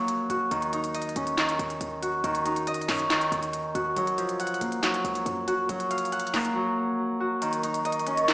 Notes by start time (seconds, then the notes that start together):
Already playing: F#1 F3 F#3 A#3 F#4 F5 F#5
0.08 closed hi-hat
0.30 F#1 F#4, closed hi-hat
0.51 D#2 D#3, closed hi-hat
0.62 closed hi-hat
0.73 D#4, closed hi-hat
0.84 closed hi-hat
0.94 D#5, closed hi-hat
1.02 closed hi-hat
1.09 closed hi-hat
1.16 D#2 C#4, closed hi-hat
1.27 closed hi-hat
1.38 D#3, snare, clap, closed hi-hat
1.49 closed hi-hat
1.59 D#2, closed hi-hat
1.70 closed hi-hat
1.81 D#2, closed hi-hat
2.02 F#4, closed hi-hat
2.24 D#2 D#3, closed hi-hat
2.35 closed hi-hat
2.45 D#4, closed hi-hat
2.56 closed hi-hat
2.67 F2 D#5, closed hi-hat
2.74 closed hi-hat
2.81 closed hi-hat
2.88 F#2 C#4, snare, clap, open hi-hat
2.99 closed hi-hat
3.10 D#3, snare, clap, closed hi-hat
3.21 closed hi-hat
3.32 D#2, closed hi-hat
3.43 closed hi-hat
3.53 closed hi-hat
3.75 D#2 F#4, closed hi-hat
3.96 F#1 F#3, closed hi-hat
4.07 closed hi-hat
4.18 F3, closed hi-hat
4.29 closed hi-hat
4.40 F#5, closed hi-hat
4.47 closed hi-hat
4.54 closed hi-hat
4.61 F#1 A#3, closed hi-hat
4.72 closed hi-hat
4.83 F#3, snare, clap, closed hi-hat
4.94 closed hi-hat
5.04 C#2, closed hi-hat
5.15 closed hi-hat
5.26 F#2, closed hi-hat
5.48 F#4, closed hi-hat
5.69 F#1 F#3, closed hi-hat
5.80 closed hi-hat
5.91 F5, closed hi-hat
5.98 closed hi-hat
6.05 closed hi-hat
6.12 F#5, closed hi-hat
6.20 closed hi-hat
6.27 closed hi-hat
6.34 F#1 A#3, snare, clap, open hi-hat
6.45 closed hi-hat
6.56 F#3
7.20 F#4
7.42 D#3 A#4 D#5 A#5 C#6, closed hi-hat
7.53 closed hi-hat
7.63 D#4, closed hi-hat
7.74 closed hi-hat
7.85 D#5, closed hi-hat
7.92 closed hi-hat
7.99 closed hi-hat
8.07 C#4, closed hi-hat
8.17 closed hi-hat
8.28 D#3, snare, clap, closed hi-hat